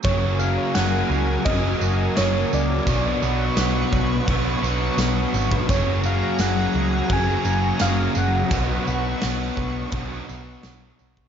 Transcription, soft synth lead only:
\new Staff \with { instrumentName = "Soft synth lead" } { \time 4/4 \key fis \major \tempo 4 = 85 cis''8 eis''8 fis''4 dis''4 cis''8 d''8~ | d''4. r2 r8 | cis''8 eis''8 fis''4 gis''4 eis''8 fis''8~ | fis''2. r4 | }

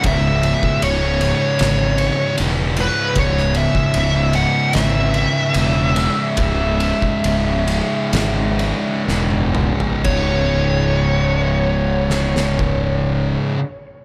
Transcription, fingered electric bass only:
\new Staff \with { instrumentName = "Fingered electric bass" } { \clef bass \time 4/4 \key cis \minor \tempo 4 = 71 cis,,4 cis,,4 gis,,4 e,,4 | cis,,4 cis,,4 gis,,4 e,,4 | cis,,4 cis,,4 gis,,4 e,,4 | cis,,1 | }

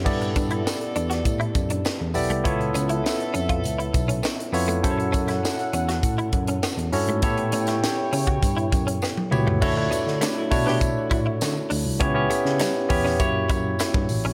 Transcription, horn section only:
\new Staff \with { instrumentName = "Horn section" } { \time 4/4 \key d \major \tempo 4 = 100 <b a' d''>2.~ <b a' d''>8 r8 | <b a' e''>2.~ <b a' e''>8 r8 | <cis' a' fis''>2.~ <cis' a' fis''>8 r8 | <e' cis'' g''>2.~ <e' cis'' g''>8 r8 |
<cis' a' e''>16 r16 <a fis' d''>16 r16 <b g' b'>16 <fis e' a'>16 r16 <b g' b'>16 r16 <a fis' cis''>16 <a fis' d''>16 r4 r16 | r1 | }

